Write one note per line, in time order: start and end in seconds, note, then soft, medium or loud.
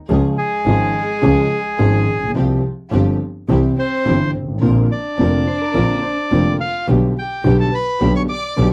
0.09 0.33 C#2 loud
0.09 0.34 C#2 loud
0.09 0.34 C#3 loud
0.09 0.34 F3 medium
0.09 0.33 G#3 medium
0.09 0.34 C#4 medium
0.09 0.34 F4 medium
0.09 0.34 G#4 medium
0.38 2.32 G#3 medium
0.38 2.32 G#4 loud
0.66 0.90 G#1 loud
0.66 0.90 G#1 medium
0.66 0.90 G#2 loud
0.66 0.90 F3 medium
0.66 0.90 G#3 medium
0.66 0.90 C#4 medium
0.66 0.90 F4 medium
0.66 0.90 G#4 medium
1.22 1.46 C#2 medium
1.22 1.47 C#2 loud
1.22 1.46 C#3 medium
1.22 1.46 F3 medium
1.22 1.46 G#3 medium
1.22 1.46 C#4 medium
1.22 1.47 C#4 medium
1.22 1.46 F4 medium
1.22 1.46 G#4 medium
1.78 2.03 G#1 medium
1.78 2.03 G#1 loud
1.78 2.03 G#2 loud
1.78 2.03 F3 medium
1.78 2.03 G#3 medium
1.78 2.03 C#4 medium
1.78 2.03 F4 medium
1.78 2.03 G#4 medium
1.78 2.03 G#4 loud
2.07 2.35 A#1 medium
2.15 2.22 A1 medium
2.23 2.29 A#1 medium
2.28 2.36 B1 medium
2.35 2.59 C2 medium
2.35 2.60 C2 loud
2.35 2.59 C3 loud
2.35 2.59 F3 medium
2.35 2.59 G3 medium
2.35 2.59 C4 medium
2.35 2.59 F4 medium
2.35 2.59 G4 medium
2.35 2.60 G4 loud
2.92 3.16 G1 loud
2.92 3.17 G1 loud
2.92 3.16 G2 medium
2.92 3.16 F3 medium
2.92 3.16 G3 medium
2.92 3.16 C4 medium
2.92 3.16 F4 medium
2.92 3.16 G4 loud
2.92 3.17 G4 loud
3.48 3.72 C2 medium
3.48 3.73 C2 loud
3.48 3.73 C3 medium
3.48 3.72 E3 medium
3.48 3.72 G3 medium
3.48 3.72 C4 medium
3.48 3.73 C4 medium
3.48 3.73 E4 medium
3.48 3.73 G4 medium
3.77 4.30 C4 loud
3.77 4.31 C5 loud
4.05 4.29 G1 loud
4.05 4.29 G1 medium
4.05 4.29 G2 medium
4.05 4.29 E3 medium
4.05 4.29 G3 medium
4.05 4.29 C4 medium
4.05 4.30 C4 medium
4.05 4.29 E4 medium
4.05 4.29 G4 medium
4.05 4.30 G4 medium
4.35 4.62 G#1 medium
4.42 4.48 G1 medium
4.48 4.55 G#1 medium
4.55 4.62 A1 medium
4.61 4.86 A#1 loud
4.61 4.86 A#2 loud
4.61 4.86 D3 medium
4.61 4.86 A#3 medium
4.61 4.86 C4 medium
4.61 4.86 D4 medium
4.61 4.86 F4 medium
4.61 4.86 A#4 medium
4.90 6.56 D4 medium
4.90 6.57 D5 loud
5.18 5.42 F1 loud
5.18 5.43 F1 loud
5.18 5.43 F2 medium
5.18 5.42 D3 medium
5.18 5.43 A#3 medium
5.18 5.42 C4 medium
5.18 5.43 C4 medium
5.18 5.42 D4 medium
5.18 5.43 F4 medium
5.18 5.42 A#4 medium
5.48 5.60 C5 loud
5.62 5.73 A#4 medium
5.74 5.99 A#1 loud
5.74 5.99 A#1 medium
5.74 5.99 A#2 medium
5.74 5.99 D3 medium
5.74 5.99 A#3 medium
5.74 5.99 C4 medium
5.74 5.99 D4 medium
5.74 5.99 F4 medium
5.74 6.01 A#4 loud
5.74 5.99 A#4 medium
6.03 6.43 C5 loud
6.31 6.55 F1 medium
6.31 6.56 F1 loud
6.31 6.56 F2 loud
6.31 6.55 D3 medium
6.31 6.55 A#3 medium
6.31 6.56 C4 medium
6.31 6.56 D4 medium
6.31 6.56 F4 medium
6.31 6.56 A#4 medium
6.59 6.86 F4 medium
6.59 6.87 F5 loud
6.87 7.11 B1 medium
6.87 7.12 B1 medium
6.87 7.12 B2 medium
6.87 7.12 D3 medium
6.87 7.12 G3 medium
6.87 7.12 B3 medium
6.87 7.12 D4 medium
6.87 7.12 G4 loud
6.87 7.12 G4 medium
7.19 7.57 G4 medium
7.19 7.57 G5 medium
7.44 7.68 B1 medium
7.44 7.68 B1 loud
7.44 7.68 B2 loud
7.44 7.68 D3 medium
7.44 7.68 G3 medium
7.44 7.68 B3 medium
7.44 7.68 D4 medium
7.44 7.68 G4 loud
7.59 7.71 A4 medium
7.59 7.74 A5 medium
7.72 8.11 B4 medium
7.72 8.13 B5 loud
8.01 8.25 B1 loud
8.01 8.25 B1 medium
8.01 8.25 B2 medium
8.01 8.25 D3 medium
8.01 8.25 G3 medium
8.01 8.25 B3 medium
8.01 8.25 D4 medium
8.01 8.25 G4 loud
8.01 8.25 G4 medium
8.15 8.22 C#5 medium
8.15 8.23 C#6 loud
8.29 8.69 D5 loud
8.29 8.68 D6 loud
8.56 8.73 B1 loud
8.56 8.73 B2 medium
8.56 8.73 D3 medium
8.56 8.73 G3 medium
8.56 8.73 B3 medium
8.56 8.73 D4 medium
8.56 8.73 G4 loud
8.56 8.73 G4 medium